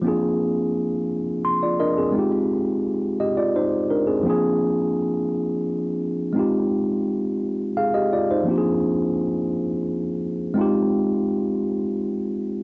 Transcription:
\new Staff \with { instrumentName = "Tine electric piano" } { \time 6/8 \key f \dorian \tempo 4. = 57 << { r2 c'''16 <f' d''>16 <d' bes' ees''>16 <c' aes'>16~ | <c' aes'>16 r4 r16 <g' ees''>16 <f' d''>16 <ees' c''>8 <d' bes'>16 <c' aes'>16~ | <c' aes'>16 r2 r8. | r2 <aes' f''>16 <g' ees''>16 <f' d''>16 <ees' c''>16~ |
<ees' c''>16 r2 r8. | r2. | } \\ { <f bes c' d' f' aes'>2. | <aes c' ees' f' g'>2. | <f bes c' d' f' aes'>2. | <aes c' ees' f' g'>2. |
<f bes c' d' f' g' aes'>2. | <aes c' ees' f' g'>2. | } >> }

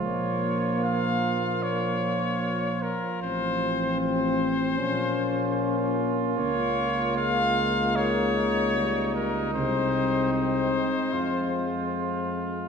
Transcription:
<<
  \new Staff \with { instrumentName = "Cornet" } { \time 4/4 \key bes \minor \tempo 4 = 76 des''4 f''4 des''4. bes'8 | c''4 c''2~ c''8 r8 | \key aes \major des''4 f''4 des''4. bes'8 | c''4 c''2~ c''8 r8 | }
  \new Staff \with { instrumentName = "Trumpet" } { \time 4/4 \key bes \minor f'1~ | f'4. r8 f'2~ | \key aes \major f'2 ees'2~ | ees'2 f'2 | }
  \new Staff \with { instrumentName = "French horn" } { \time 4/4 \key bes \minor bes2.~ bes8 r8 | c'2 des'2 | \key aes \major bes1 | c'2.~ c'8 r8 | }
  \new Staff \with { instrumentName = "Trombone" } { \clef bass \time 4/4 \key bes \minor f1~ | f4. r8 bes2~ | \key aes \major bes4 aes2 g4 | aes1 | }
  \new Staff \with { instrumentName = "Tuba" } { \clef bass \time 4/4 \key bes \minor bes,,2.~ bes,,8 r8 | a,,2 bes,,2 | \key aes \major des,1 | c,4. r8 f,2 | }
>>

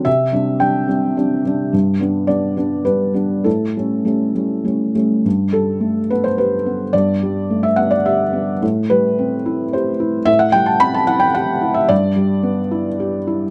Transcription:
<<
  \new Staff \with { instrumentName = "Felt piano" } { \time 3/4 \key g \major \tempo 4 = 107 e''4 g''4 r4 | r4 d''4 b'4 | a'2~ a'8 r8 | r8 a'4 b'16 c''16 b'4 |
d''4~ d''16 e''16 fis''16 d''16 e''4 | r8 b'4. c''4 | e''16 fis''16 g''16 a''16 b''16 a''16 fis''16 g''16 fis''8. e''16 | d''2. | }
  \new Staff \with { instrumentName = "Felt piano" } { \time 3/4 \key g \major c8 <g c' d'>8 <g c' d'>8 <g c' d'>8 <g c' d'>8 <g c' d'>8 | g,8 <g b d'>8 <g b d'>8 <g b d'>8 <g b d'>8 <g b d'>8 | a,8 <g a cis'>8 <g a cis'>8 <g a cis'>8 <g a cis'>8 <g a cis'>8 | g,8 g8 a8 b8 g'8 b8 |
g,8 g8 a8 b8 g'8 b8 | a,8 g8 c'8 e'8 g'8 e'8 | a,8 g8 c'8 e'8 g'8 e'8 | g,8 g8 b8 e'8 g'8 e'8 | }
>>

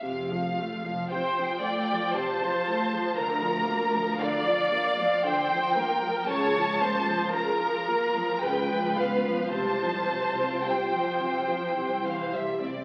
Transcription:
<<
  \new Staff \with { instrumentName = "Violin section" } { \time 3/4 \key f \major \tempo 4 = 57 f''4 g''4 a''4 | bes''4 f''8 f''8 g''4 | a''4 bes''4 g''8 f''8 | a''4 g''4~ g''16 f''16 e''16 d''16 | }
  \new Staff \with { instrumentName = "Violin section" } { \time 3/4 \key f \major r4 c''8 d''8 c''4 | bes'4 d''4 c''8 bes'8 | des''8 c''8 bes'4 ces''4 | c''2~ c''8 r8 | }
  \new Staff \with { instrumentName = "Viola section" } { \clef bass \time 3/4 \key f \major << { f'2.~ | f'2. | f'2.~ | f'2 e'4 | } \\ { c16 f16 a16 f16 c16 f16 a16 f16 c16 f16 a16 f16 | d16 f16 bes16 f16 d16 f16 bes16 f16 d16 f16 bes16 f16 | des16 f16 bes16 f16 des16 f16 bes16 f16 des16 f16 ces'16 f16 | c16 f16 g16 c'16 g16 f16 c16 f16 c16 e16 g16 c'16 | } >> }
  \new Staff \with { instrumentName = "Cello section" } { \clef bass \time 3/4 \key f \major f,4 r2 | d,4 r2 | des,4 r4 des,4 | c,4 r4 c,4 | }
  \new Staff \with { instrumentName = "Double bass section" } { \clef bass \time 3/4 \key f \major f,,4 r2 | d,4 r2 | des,4 r4 des,4 | c,4 r4 c,4 | }
>>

